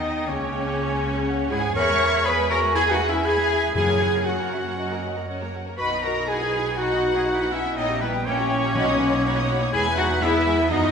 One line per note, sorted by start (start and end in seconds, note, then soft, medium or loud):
0.00 0.27 D#2 medium
0.00 0.27 D#3 medium
0.00 0.26 B3 medium
0.00 0.27 D#4 medium
0.00 0.27 D#4 loud
0.00 0.27 D#4 medium
0.00 0.27 D#5 medium
0.00 0.30 D#5 medium
0.00 0.76 G5 medium
0.28 1.52 C#2 loud
0.28 1.52 C#3 loud
0.28 1.49 A#3 medium
0.28 1.52 C#4 medium
0.28 1.52 C#4 loud
0.28 1.51 C#5 medium
0.28 1.52 C#5 medium
0.78 1.27 G#5 loud
1.27 1.75 F#5 loud
1.51 1.76 G#2 loud
1.51 1.77 G#3 loud
1.51 1.62 E4 loud
1.51 1.76 G#4 loud
1.51 1.63 G#5 loud
1.51 1.77 G#5 loud
1.76 3.71 E2 loud
1.76 1.88 B3 medium
1.76 1.88 G#4 medium
1.76 2.27 A#4 loud
1.76 2.24 C#5 loud
1.76 2.25 C#5 loud
1.76 2.25 E5 loud
1.76 1.88 G#5 medium
1.76 1.88 B5 medium
1.76 2.28 C#6 loud
1.76 2.25 C#6 loud
1.88 2.01 G#3 medium
1.88 2.01 B4 medium
1.88 2.01 E5 medium
1.88 2.00 G#5 medium
2.00 2.13 B3 medium
2.00 2.13 G#4 medium
2.00 2.13 G#5 medium
2.00 2.14 B5 medium
2.13 2.25 G#3 medium
2.13 2.25 B4 medium
2.13 2.26 E5 medium
2.13 2.24 G#5 medium
2.25 2.37 B3 medium
2.25 2.37 G#4 medium
2.25 2.50 G#4 loud
2.25 2.50 B4 loud
2.25 2.51 B4 loud
2.25 2.37 G#5 medium
2.25 3.25 G#5 loud
2.25 2.37 B5 medium
2.25 2.51 B5 loud
2.38 2.50 G#3 medium
2.38 2.50 B4 medium
2.38 2.50 E5 medium
2.38 2.49 G#5 medium
2.50 2.63 B3 medium
2.50 2.74 F#4 loud
2.50 2.63 G#4 medium
2.50 2.58 A#4 loud
2.50 2.75 A#4 loud
2.50 2.62 G#5 medium
2.50 2.59 A#5 loud
2.50 2.77 A#5 loud
2.50 2.63 B5 medium
2.63 2.75 G#3 medium
2.63 2.75 B4 medium
2.63 2.75 E5 medium
2.63 2.75 G#5 medium
2.75 2.87 B3 medium
2.75 2.82 E4 loud
2.75 2.91 G#4 loud
2.75 2.87 G#4 medium
2.75 2.91 G#4 loud
2.75 2.82 G#5 loud
2.75 2.93 G#5 loud
2.75 2.87 G#5 medium
2.75 2.87 B5 medium
2.86 2.99 G#3 medium
2.86 2.99 B4 medium
2.86 3.00 E5 medium
2.86 3.00 G#5 medium
2.91 2.99 D#4 loud
2.91 3.08 F#4 loud
2.91 3.09 F#4 loud
2.91 3.08 F#5 loud
2.99 3.12 B3 medium
2.99 3.12 G#4 medium
2.99 3.12 G#5 medium
2.99 3.13 B5 medium
3.08 3.24 C#4 loud
3.08 3.15 E4 loud
3.08 3.25 E4 loud
3.08 3.25 E5 loud
3.08 3.27 E5 loud
3.12 3.25 G#3 medium
3.12 3.25 B4 medium
3.12 3.25 E5 medium
3.12 3.25 G#5 medium
3.23 3.36 B3 medium
3.23 3.74 E4 loud
3.23 3.73 G#4 loud
3.23 3.36 G#4 medium
3.23 3.74 G#4 loud
3.23 3.75 E5 loud
3.23 3.74 G#5 loud
3.23 3.75 G#5 loud
3.23 3.37 G#5 medium
3.23 3.37 B5 medium
3.36 3.49 G#3 medium
3.36 3.49 B4 medium
3.36 3.51 E5 medium
3.36 3.50 G#5 medium
3.49 3.62 B3 medium
3.49 3.62 G#4 medium
3.49 3.62 G#5 medium
3.49 3.63 B5 medium
3.62 3.75 G#3 medium
3.62 3.75 B4 medium
3.62 3.76 E5 medium
3.62 3.76 G#5 medium
3.74 4.47 F#2 loud
3.74 5.55 F#2 medium
3.74 3.87 C#4 medium
3.74 4.26 E4 loud
3.74 3.87 F#4 medium
3.74 4.24 G#4 loud
3.74 4.25 G#4 loud
3.74 3.87 A#4 medium
3.74 4.20 C#5 medium
3.74 3.87 F#5 medium
3.74 4.25 G#5 loud
3.74 4.27 G#5 loud
3.88 4.01 A#3 medium
3.88 4.01 A#4 medium
3.88 4.01 C#5 medium
3.88 4.01 A#5 medium
4.00 4.13 C#4 medium
4.00 4.13 F#4 medium
4.00 4.14 A#4 medium
4.00 4.14 F#5 medium
4.13 4.26 A#3 medium
4.13 4.26 A#4 medium
4.13 4.26 C#5 medium
4.13 4.26 A#5 medium
4.25 5.27 C#4 medium
4.25 4.38 C#4 medium
4.25 5.27 F#4 medium
4.25 5.28 F#4 medium
4.25 4.38 F#4 medium
4.25 4.38 A#4 medium
4.25 5.28 F#5 medium
4.25 4.50 F#5 medium
4.25 4.38 F#5 medium
4.25 5.28 F#5 medium
4.38 4.52 A#3 medium
4.38 4.52 A#4 medium
4.38 4.51 C#5 medium
4.38 4.51 A#5 medium
4.51 4.64 C#4 medium
4.51 4.64 F#4 medium
4.51 4.64 A#4 medium
4.51 4.58 E5 medium
4.51 4.64 F#5 medium
4.64 4.77 A#3 medium
4.64 4.77 A#4 medium
4.64 4.77 C#5 medium
4.64 4.77 A#5 medium
4.76 4.89 C#4 medium
4.76 4.89 F#4 medium
4.76 4.89 A#4 medium
4.76 5.27 D#5 medium
4.76 4.89 F#5 medium
4.90 5.02 A#3 medium
4.90 5.03 A#4 medium
4.90 5.03 C#5 medium
4.90 5.03 A#5 medium
5.03 5.15 C#4 medium
5.03 5.15 F#4 medium
5.03 5.16 A#4 medium
5.03 5.16 F#5 medium
5.16 5.28 A#3 medium
5.16 5.28 A#4 medium
5.16 5.28 C#5 medium
5.16 5.28 A#5 medium
5.27 5.40 C#4 medium
5.27 5.40 F#4 medium
5.27 5.40 A#4 medium
5.27 5.55 C#5 medium
5.27 5.40 F#5 medium
5.41 5.53 A#3 medium
5.41 5.54 A#4 medium
5.41 5.54 C#5 medium
5.41 5.54 A#5 medium
5.54 5.66 C#4 medium
5.54 5.66 F#4 medium
5.54 5.66 A#4 medium
5.54 5.66 F#5 medium
5.66 5.79 A#3 medium
5.66 5.79 A#4 medium
5.66 5.78 C#5 medium
5.66 5.78 A#5 medium
5.78 7.73 B1 medium
5.78 5.91 D#4 medium
5.78 5.89 F#4 medium
5.78 5.91 F#4 medium
5.78 5.89 B4 loud
5.78 5.90 B4 medium
5.78 6.02 B4 loud
5.78 6.25 D#5 medium
5.78 5.90 F#5 medium
5.78 6.04 B5 loud
5.78 6.02 B5 loud
5.90 6.04 B3 medium
5.90 6.03 D#4 medium
5.90 6.03 D#5 medium
5.90 6.03 B5 medium
6.02 6.16 D#4 medium
6.02 6.29 F#4 medium
6.02 6.17 F#4 medium
6.02 6.28 A#4 medium
6.02 6.29 A#4 loud
6.02 6.16 B4 medium
6.02 6.16 F#5 medium
6.02 6.30 A#5 medium
6.02 6.28 A#5 loud
6.16 6.29 B3 medium
6.16 6.28 D#4 medium
6.16 6.28 D#5 medium
6.16 6.28 B5 medium
6.28 6.41 D#4 medium
6.28 6.79 E4 medium
6.28 6.41 F#4 medium
6.28 6.77 G#4 medium
6.28 6.77 G#4 loud
6.28 6.40 B4 medium
6.28 6.78 B4 medium
6.28 6.40 F#5 medium
6.28 6.79 G#5 loud
6.28 6.78 G#5 medium
6.40 6.54 B3 medium
6.40 6.53 D#4 medium
6.40 6.53 D#5 medium
6.40 6.53 B5 medium
6.53 6.65 D#4 medium
6.53 6.66 F#4 medium
6.53 6.65 B4 medium
6.53 6.65 F#5 medium
6.65 6.78 B3 medium
6.65 6.77 D#4 medium
6.65 6.78 D#5 medium
6.65 6.78 B5 medium
6.77 7.53 D#4 loud
6.77 6.90 D#4 medium
6.77 7.50 F#4 loud
6.77 7.15 F#4 loud
6.77 6.90 F#4 medium
6.77 6.89 B4 medium
6.77 7.27 D#5 medium
6.77 7.52 F#5 loud
6.77 6.89 F#5 medium
6.77 7.54 F#5 loud
6.89 7.03 B3 medium
6.89 7.01 D#4 medium
6.89 7.02 D#5 medium
6.89 7.02 B5 medium
7.02 7.14 D#4 medium
7.02 7.15 F#4 medium
7.02 7.14 B4 medium
7.02 7.14 F#5 medium
7.14 7.27 B3 medium
7.14 7.27 D#4 medium
7.14 7.25 G#4 loud
7.14 7.27 D#5 medium
7.14 7.27 B5 medium
7.25 7.39 D#4 medium
7.25 7.34 F#4 loud
7.25 7.39 F#4 medium
7.25 7.38 B4 medium
7.25 7.38 F#5 medium
7.25 7.77 F#5 loud
7.34 7.43 E4 medium
7.39 7.52 B3 medium
7.39 7.51 D#4 medium
7.39 7.52 F#4 loud
7.39 7.52 D#5 medium
7.39 7.52 B5 medium
7.51 7.76 C#4 medium
7.51 7.63 D#4 medium
7.51 7.77 E4 loud
7.51 7.77 E4 medium
7.51 7.64 F#4 medium
7.51 7.64 B4 medium
7.51 7.76 E5 loud
7.51 7.78 E5 medium
7.51 7.64 F#5 medium
7.63 7.76 B3 medium
7.63 7.77 D#4 medium
7.63 7.76 D#5 medium
7.63 7.76 B5 medium
7.76 8.73 A#1 medium
7.76 7.88 A#3 medium
7.76 8.02 B3 medium
7.76 8.01 D#4 loud
7.76 7.88 E4 medium
7.76 7.88 C#5 medium
7.76 8.00 D#5 loud
7.76 8.02 D#5 loud
7.76 7.88 G5 medium
7.76 8.73 G5 loud
7.89 8.01 C#4 medium
7.89 8.01 G4 medium
7.89 8.01 E5 medium
7.89 8.01 A#5 medium
8.01 8.27 G3 medium
8.01 8.14 A#3 medium
8.01 8.25 B3 medium
8.01 8.10 B3 loud
8.01 8.13 E4 medium
8.01 8.27 B4 medium
8.01 8.09 B4 medium
8.01 8.13 C#5 medium
8.01 8.13 G5 medium
8.13 8.26 C#4 medium
8.13 8.26 G4 medium
8.13 8.25 E5 medium
8.13 8.25 A#5 medium
8.25 9.72 A#3 loud
8.25 8.37 A#3 medium
8.25 9.71 C#4 loud
8.25 9.74 C#4 loud
8.25 8.37 E4 medium
8.25 9.70 C#5 loud
8.25 9.74 C#5 loud
8.25 8.37 C#5 medium
8.25 8.37 G5 medium
8.38 8.50 C#4 medium
8.38 8.50 G4 medium
8.38 8.50 E5 medium
8.38 8.50 A#5 medium
8.50 8.62 A#3 medium
8.50 8.62 E4 medium
8.50 8.63 C#5 medium
8.50 8.63 G5 medium
8.62 8.75 C#4 medium
8.62 8.75 G4 medium
8.62 8.75 E5 medium
8.62 8.75 A#5 medium
8.74 9.73 B1 loud
8.74 9.45 B2 loud
8.74 8.85 D#4 medium
8.74 8.86 F#4 medium
8.74 9.23 D#5 loud
8.74 8.86 F#5 medium
8.74 8.86 B5 medium
8.86 8.99 B3 medium
8.86 8.97 D#4 medium
8.86 8.99 D#5 medium
8.86 8.99 D#6 medium
8.98 9.10 D#4 medium
8.98 9.11 F#4 medium
8.98 9.12 F#5 medium
8.98 9.12 B5 medium
9.11 9.24 B3 medium
9.11 9.22 D#4 medium
9.11 9.24 D#5 medium
9.11 9.24 D#6 medium
9.23 9.35 D#4 medium
9.23 9.35 F#4 medium
9.23 9.74 C#5 loud
9.23 9.35 F#5 medium
9.23 9.36 B5 medium
9.36 9.49 B3 medium
9.36 9.47 D#4 medium
9.36 9.49 D#5 medium
9.36 9.49 D#6 medium
9.48 9.60 D#4 medium
9.48 9.61 F#4 medium
9.48 9.61 F#5 medium
9.48 9.61 B5 medium
9.61 9.73 B3 medium
9.61 9.73 D#4 medium
9.61 9.73 D#5 medium
9.61 9.73 D#6 medium
9.73 10.69 E2 loud
9.73 9.85 G#3 medium
9.73 9.98 E4 loud
9.73 9.84 G#4 loud
9.73 9.85 G#4 medium
9.73 9.81 G#4 loud
9.73 10.70 B4 loud
9.73 9.85 G#5 medium
9.73 9.98 G#5 loud
9.73 9.85 G#5 loud
9.73 9.85 B5 medium
9.85 9.98 B3 medium
9.85 9.98 B4 medium
9.85 9.98 E5 medium
9.85 9.97 G#5 medium
9.97 10.10 G#3 medium
9.97 10.23 D#4 loud
9.97 10.21 F#4 loud
9.97 10.06 F#4 loud
9.97 10.10 G#4 medium
9.97 10.22 F#5 loud
9.97 10.24 F#5 loud
9.97 10.09 G#5 medium
9.97 10.10 B5 medium
10.10 10.22 B3 medium
10.10 10.22 B4 medium
10.10 10.22 E5 medium
10.10 10.21 G#5 medium
10.22 10.34 G#3 medium
10.22 10.70 B3 loud
10.22 10.70 E4 loud
10.22 10.34 G#4 medium
10.22 10.72 E5 loud
10.22 10.71 E5 loud
10.22 10.33 G#5 medium
10.22 10.34 B5 medium
10.34 10.47 B3 medium
10.34 10.47 B4 medium
10.34 10.46 E5 medium
10.34 10.45 G#5 medium
10.47 10.59 G#3 medium
10.47 10.59 G#4 medium
10.47 10.58 G#5 medium
10.47 10.59 B5 medium
10.59 10.71 B3 medium
10.59 10.71 B4 medium
10.59 10.71 E5 medium
10.59 10.71 G#5 medium
10.70 10.91 F#2 loud
10.70 10.83 E3 medium
10.70 10.91 B3 loud
10.70 10.91 D#4 loud
10.70 10.83 F#4 medium
10.70 10.91 A#4 loud
10.70 10.91 D#5 loud
10.70 10.82 F#5 medium
10.70 10.82 A#5 medium
10.83 10.91 F#3 medium
10.83 10.91 E4 medium
10.83 10.91 E5 medium
10.83 10.91 C#6 medium